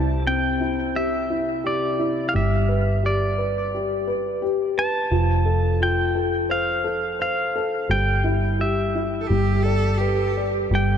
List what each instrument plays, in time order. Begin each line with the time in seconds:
Already playing: fingered electric bass C2, felt piano C3 E4, pedal steel guitar A5
0.26 felt piano C4, pedal steel guitar G5
0.60 felt piano E4
0.96 felt piano G4, pedal steel guitar E5
1.30 felt piano E4
1.64 felt piano G4, pedal steel guitar D5
1.99 felt piano E4
2.29 pedal steel guitar F5
2.34 fingered electric bass G1, felt piano G3, pedal steel guitar E5
2.69 felt piano B4
3.03 felt piano G4, pedal steel guitar D5
3.38 felt piano B4
3.74 felt piano G4
4.07 felt piano B4
4.42 felt piano G4
4.78 felt piano B4, pedal steel guitar A5
5.11 fingered electric bass F1, felt piano F3
5.46 felt piano A4
5.80 felt piano F4, pedal steel guitar G5
6.15 felt piano A4
6.49 felt piano C5, pedal steel guitar F5
6.84 felt piano A4
7.19 felt piano C5, pedal steel guitar F5
7.56 felt piano A4
7.89 fingered electric bass G1, felt piano G3, pedal steel guitar G5
8.24 felt piano E4
8.59 felt piano G4, pedal steel guitar E5
8.95 felt piano E4
9.21 cello A4
9.27 fingered electric bass G1, felt piano G3, cello G4
9.62 cello A4, felt piano D5
9.98 cello G4, felt piano B4
10.37 felt piano D5
10.71 fingered electric bass G1, felt piano G3
10.75 pedal steel guitar G5